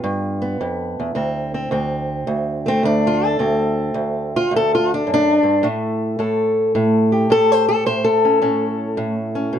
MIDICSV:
0, 0, Header, 1, 2, 480
1, 0, Start_track
1, 0, Tempo, 558140
1, 999, Time_signature, 4, 2, 24, 8
1, 8247, End_track
2, 0, Start_track
2, 0, Title_t, "Steel-string acoustic guitar"
2, 0, Program_c, 0, 25
2, 0, Note_on_c, 0, 59, 47
2, 0, Note_on_c, 0, 65, 49
2, 31, Note_on_c, 0, 43, 73
2, 348, Note_off_c, 0, 59, 0
2, 358, Note_on_c, 0, 59, 43
2, 515, Note_off_c, 0, 43, 0
2, 522, Note_on_c, 0, 41, 61
2, 846, Note_off_c, 0, 41, 0
2, 856, Note_on_c, 0, 40, 62
2, 976, Note_off_c, 0, 65, 0
2, 978, Note_off_c, 0, 59, 0
2, 985, Note_off_c, 0, 40, 0
2, 988, Note_on_c, 0, 38, 67
2, 994, Note_on_c, 0, 60, 48
2, 1324, Note_off_c, 0, 60, 0
2, 1327, Note_on_c, 0, 60, 49
2, 1467, Note_off_c, 0, 38, 0
2, 1470, Note_on_c, 0, 38, 75
2, 1475, Note_off_c, 0, 60, 0
2, 1478, Note_on_c, 0, 60, 51
2, 1950, Note_off_c, 0, 38, 0
2, 1953, Note_on_c, 0, 38, 76
2, 2280, Note_off_c, 0, 60, 0
2, 2287, Note_on_c, 0, 57, 46
2, 2306, Note_on_c, 0, 60, 81
2, 2425, Note_off_c, 0, 38, 0
2, 2435, Note_on_c, 0, 38, 68
2, 2451, Note_off_c, 0, 60, 0
2, 2454, Note_on_c, 0, 62, 81
2, 2640, Note_on_c, 0, 65, 82
2, 2802, Note_off_c, 0, 65, 0
2, 2802, Note_on_c, 0, 69, 88
2, 2906, Note_off_c, 0, 38, 0
2, 2916, Note_on_c, 0, 38, 70
2, 2918, Note_off_c, 0, 62, 0
2, 2922, Note_on_c, 0, 60, 50
2, 3381, Note_off_c, 0, 38, 0
2, 3391, Note_on_c, 0, 38, 70
2, 3742, Note_off_c, 0, 69, 0
2, 3752, Note_on_c, 0, 65, 85
2, 3869, Note_off_c, 0, 38, 0
2, 3880, Note_on_c, 0, 38, 73
2, 3897, Note_off_c, 0, 65, 0
2, 3925, Note_on_c, 0, 69, 86
2, 4063, Note_off_c, 0, 69, 0
2, 4083, Note_on_c, 0, 65, 78
2, 4200, Note_off_c, 0, 60, 0
2, 4222, Note_off_c, 0, 65, 0
2, 4249, Note_on_c, 0, 62, 76
2, 4355, Note_off_c, 0, 38, 0
2, 4358, Note_on_c, 0, 42, 58
2, 4385, Note_off_c, 0, 62, 0
2, 4418, Note_on_c, 0, 62, 99
2, 4666, Note_off_c, 0, 42, 0
2, 4670, Note_on_c, 0, 43, 58
2, 4696, Note_off_c, 0, 57, 0
2, 4833, Note_off_c, 0, 43, 0
2, 4841, Note_on_c, 0, 45, 75
2, 4852, Note_on_c, 0, 57, 48
2, 4869, Note_off_c, 0, 62, 0
2, 5318, Note_off_c, 0, 45, 0
2, 5321, Note_on_c, 0, 45, 68
2, 5329, Note_on_c, 0, 69, 44
2, 5801, Note_off_c, 0, 45, 0
2, 5804, Note_on_c, 0, 45, 72
2, 6124, Note_on_c, 0, 67, 47
2, 6268, Note_off_c, 0, 45, 0
2, 6278, Note_on_c, 0, 45, 69
2, 6289, Note_off_c, 0, 69, 0
2, 6293, Note_on_c, 0, 69, 111
2, 6465, Note_off_c, 0, 69, 0
2, 6465, Note_on_c, 0, 72, 87
2, 6606, Note_off_c, 0, 72, 0
2, 6609, Note_on_c, 0, 69, 95
2, 6741, Note_off_c, 0, 67, 0
2, 6750, Note_off_c, 0, 45, 0
2, 6760, Note_on_c, 0, 45, 73
2, 6761, Note_off_c, 0, 69, 0
2, 6764, Note_on_c, 0, 72, 93
2, 6918, Note_on_c, 0, 69, 88
2, 6922, Note_off_c, 0, 72, 0
2, 7093, Note_on_c, 0, 61, 44
2, 7228, Note_off_c, 0, 45, 0
2, 7233, Note_off_c, 0, 61, 0
2, 7238, Note_on_c, 0, 45, 65
2, 7243, Note_on_c, 0, 61, 48
2, 7705, Note_off_c, 0, 45, 0
2, 7716, Note_on_c, 0, 45, 74
2, 7862, Note_off_c, 0, 57, 0
2, 8032, Note_off_c, 0, 61, 0
2, 8043, Note_on_c, 0, 61, 42
2, 8189, Note_off_c, 0, 45, 0
2, 8193, Note_on_c, 0, 47, 58
2, 8247, Note_off_c, 0, 47, 0
2, 8247, Note_off_c, 0, 61, 0
2, 8247, Note_off_c, 0, 69, 0
2, 8247, End_track
0, 0, End_of_file